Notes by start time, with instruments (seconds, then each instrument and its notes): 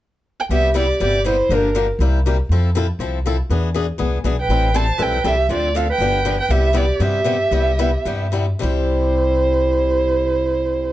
0.40 violin G5
0.49 upright bass C2, steel-string acoustic guitar C3 G3 B3 E4 G4, clarinet G4, violin E5
0.74 steel-string acoustic guitar C3 G3 B3 E4 G4, clarinet G4, violin D5
1.00 upright bass G1, steel-string acoustic guitar C3 G3 B3 E4 G4, clarinet G4, violin D5
1.25 steel-string acoustic guitar C3 G3 B3 E4 G4, clarinet E4, violin C5
1.49 upright bass G1, steel-string acoustic guitar D3 F3 A#3 D4 G4, clarinet D4
1.54 violin A#4
1.75 steel-string acoustic guitar D3 F3 A#3 D4 G4
1.99 upright bass C2, steel-string acoustic guitar C3 G3 A#3 E4 G4
2.26 steel-string acoustic guitar C3 G3 A#3 E4 G4
2.49 upright bass F2, steel-string acoustic guitar F3 C4 E4 A4
2.75 steel-string acoustic guitar F3 C4 E4 A4
2.99 upright bass C2, steel-string acoustic guitar F3 C4 E4 A4
3.26 steel-string acoustic guitar F3 C4 E4 A4
3.50 upright bass E2, steel-string acoustic guitar E3 B3 D4 G#4
3.74 steel-string acoustic guitar E3 B3 D4 G#4
3.98 upright bass C2, steel-string acoustic guitar E3 B3 D4 G#4
4.24 upright bass B1, steel-string acoustic guitar E3 B3 D4 G#4
4.39 clarinet B4, violin G5
4.48 upright bass A1, steel-string acoustic guitar E3 G3 C4 E4 A4
4.74 steel-string acoustic guitar E3 G3 C4 E4 A4, clarinet C5, violin A5
4.98 upright bass B1, steel-string acoustic guitar E3 G3 C4 E4 A4, clarinet B4
5.02 violin G5
5.24 upright bass C2, steel-string acoustic guitar E3 G3 C4 E4 A4, clarinet G4, violin E5
5.49 upright bass D2, steel-string acoustic guitar D3 F3 C4 D4 A4, clarinet F4, violin D5
5.75 steel-string acoustic guitar D3 F3 C4 D4 A4, clarinet A4, violin F5
5.90 clarinet B4, violin G5
5.98 upright bass G1, steel-string acoustic guitar D3 F3 B3 D4 G4
6.25 steel-string acoustic guitar D3 F3 B3 D4 G4
6.40 clarinet B4, violin G5
6.49 upright bass C2, steel-string acoustic guitar C3 G3 B3 E4 G4, clarinet G4, violin E5
6.73 steel-string acoustic guitar C3 G3 B3 E4 G4, clarinet G4, violin D5
7.00 upright bass G2, steel-string acoustic guitar C3 G3 B3 E4 G4, clarinet G4, violin E5
7.24 steel-string acoustic guitar C3 G3 B3 E4 G4
7.51 upright bass C2, steel-string acoustic guitar C3 G3 B3 E4 G4
7.79 steel-string acoustic guitar C3 G3 B3 E4 G4
8.05 upright bass G2, steel-string acoustic guitar C3 G3 B3 E4 G4
8.32 steel-string acoustic guitar C3 G3 B3 E4 G4
8.59 upright bass C2, steel-string acoustic guitar C3 G3 E4, clarinet E4
8.63 steel-string acoustic guitar G4, violin C5